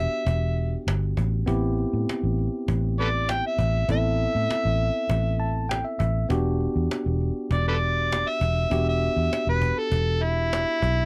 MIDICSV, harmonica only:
0, 0, Header, 1, 2, 480
1, 0, Start_track
1, 0, Key_signature, 1, "minor"
1, 0, Tempo, 603015
1, 1173, Time_signature, 4, 2, 24, 8
1, 8798, End_track
2, 0, Start_track
2, 0, Title_t, "Harmonica"
2, 0, Program_c, 0, 22
2, 0, Note_on_c, 0, 76, 104
2, 673, Note_off_c, 0, 76, 0
2, 2392, Note_on_c, 0, 69, 70
2, 2392, Note_on_c, 0, 71, 70
2, 2392, Note_on_c, 0, 74, 100
2, 2451, Note_off_c, 0, 71, 0
2, 2456, Note_off_c, 0, 69, 0
2, 2632, Note_on_c, 0, 79, 86
2, 2644, Note_off_c, 0, 74, 0
2, 2739, Note_off_c, 0, 79, 0
2, 2762, Note_on_c, 0, 76, 80
2, 3094, Note_off_c, 0, 76, 0
2, 3116, Note_on_c, 0, 76, 114
2, 4511, Note_off_c, 0, 76, 0
2, 5990, Note_on_c, 0, 74, 77
2, 6097, Note_off_c, 0, 74, 0
2, 6115, Note_on_c, 0, 69, 71
2, 6115, Note_on_c, 0, 71, 71
2, 6115, Note_on_c, 0, 74, 101
2, 6168, Note_off_c, 0, 71, 0
2, 6184, Note_off_c, 0, 69, 0
2, 6593, Note_on_c, 0, 76, 85
2, 6605, Note_off_c, 0, 74, 0
2, 7050, Note_off_c, 0, 76, 0
2, 7075, Note_on_c, 0, 76, 88
2, 7530, Note_off_c, 0, 76, 0
2, 7555, Note_on_c, 0, 71, 84
2, 7791, Note_on_c, 0, 69, 81
2, 7802, Note_off_c, 0, 71, 0
2, 8144, Note_on_c, 0, 64, 105
2, 8156, Note_off_c, 0, 69, 0
2, 8798, Note_off_c, 0, 64, 0
2, 8798, End_track
0, 0, End_of_file